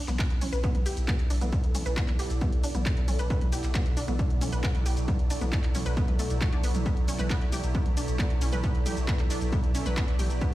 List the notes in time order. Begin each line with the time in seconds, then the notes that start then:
Already playing: B2 F#3 E4
0.08 B1 B3 A4, clap, closed hi-hat, mid tom, shaker
0.19 kick, clap, closed hi-hat, shaker
0.30 B1, closed hi-hat
0.41 C#4, open hi-hat, mid tom, ride, shaker
0.53 B1 B4, closed hi-hat, shaker
0.64 B3 D5, kick, closed hi-hat, shaker
0.75 B1, closed hi-hat, mid tom
0.86 G4, open hi-hat, ride, shaker
0.97 B1, closed hi-hat, shaker
1.08 B3, kick, clap, closed hi-hat, mid tom, shaker
1.19 B1, closed hi-hat
1.30 B1 D4, open hi-hat, ride, shaker
1.41 B1 B3, closed hi-hat, mid tom, shaker
1.53 kick, closed hi-hat, shaker
1.64 B1, closed hi-hat
1.75 C#4, open hi-hat, mid tom, ride, shaker
1.86 B1 B4, closed hi-hat, shaker
1.97 B3, kick, clap, closed hi-hat, shaker
2.08 B1, clap, closed hi-hat, mid tom
2.19 G4, open hi-hat, ride, shaker
2.30 B1, closed hi-hat, shaker
2.41 B3, kick, closed hi-hat, mid tom, shaker
2.52 B1, closed hi-hat
2.64 D4, open hi-hat, ride, shaker
2.75 B1 B3, closed hi-hat, mid tom, shaker
2.86 kick, clap, closed hi-hat, shaker
2.97 B1, closed hi-hat
3.08 B1 C#4, open hi-hat, mid tom, ride, shaker
3.19 B1 B4, closed hi-hat, shaker
3.30 B3, kick, closed hi-hat, shaker
3.41 B1, closed hi-hat, mid tom
3.52 G4, open hi-hat, ride, shaker
3.64 B1, clap, closed hi-hat, shaker
3.75 B3, kick, clap, closed hi-hat, mid tom, shaker
3.86 B1, closed hi-hat
3.97 D4, open hi-hat, ride, shaker
4.08 B1 B3, closed hi-hat, mid tom, shaker
4.19 kick, closed hi-hat, shaker
4.30 B1, closed hi-hat
4.41 C#4, open hi-hat, mid tom, ride, shaker
4.52 B1 B4, closed hi-hat, shaker
4.64 B3, kick, clap, closed hi-hat, shaker
4.75 B1, closed hi-hat, mid tom
4.86 B1 G4, open hi-hat, ride, shaker
4.97 B1, closed hi-hat, shaker
5.08 B3, kick, closed hi-hat, mid tom, shaker
5.19 B1, closed hi-hat
5.30 D4, open hi-hat, ride, shaker
5.41 B1 B3, mid tom, shaker
5.52 kick, clap, closed hi-hat, shaker
5.64 B1, clap, closed hi-hat
5.75 C#4, open hi-hat, mid tom, ride, shaker
5.86 B1 B4, closed hi-hat, shaker
5.97 B3, kick, closed hi-hat, shaker
6.08 B1, closed hi-hat, mid tom
6.19 A3, open hi-hat, ride, shaker
6.30 B1, closed hi-hat, shaker
6.41 F#4, kick, clap, closed hi-hat, mid tom, shaker
6.53 B1 D4, closed hi-hat
6.64 B1 B3, open hi-hat, ride, shaker
6.75 B1, closed hi-hat, mid tom, shaker
6.86 B3, kick, closed hi-hat, mid tom, shaker
6.97 B1, closed hi-hat
7.08 C#4, open hi-hat, ride, shaker
7.19 B1 B4, clap, closed hi-hat, mid tom, shaker
7.30 B3, kick, clap, closed hi-hat, shaker
7.41 B1, closed hi-hat
7.52 G4, open hi-hat, mid tom, ride, shaker
7.64 B1, closed hi-hat, shaker
7.75 B3, kick, closed hi-hat, shaker
7.86 B1, closed hi-hat, mid tom
7.97 D4, open hi-hat, ride, shaker
8.08 B1, closed hi-hat, shaker
8.19 B3, kick, clap, closed hi-hat, mid tom, shaker
8.30 B1, closed hi-hat
8.41 B1 C#4, open hi-hat, ride, shaker
8.53 B1 B4, closed hi-hat, mid tom, shaker
8.64 B3, kick, closed hi-hat, shaker
8.75 B1, closed hi-hat
8.86 G4, open hi-hat, mid tom, ride, shaker
8.97 B1, closed hi-hat, shaker
9.08 B3, kick, clap, closed hi-hat, shaker
9.19 B1, clap, closed hi-hat, mid tom
9.30 D4, open hi-hat, ride, shaker
9.41 B1, closed hi-hat, shaker
9.53 B3, kick, closed hi-hat, mid tom, shaker
9.64 B1, closed hi-hat
9.75 C#4, open hi-hat, ride, shaker
9.86 B1 B4, closed hi-hat, mid tom, shaker
9.97 B3, kick, clap, closed hi-hat, shaker
10.08 B1, closed hi-hat
10.19 B1 G4, open hi-hat, mid tom, ride, shaker
10.30 B1, closed hi-hat, shaker
10.41 B3, kick, closed hi-hat, shaker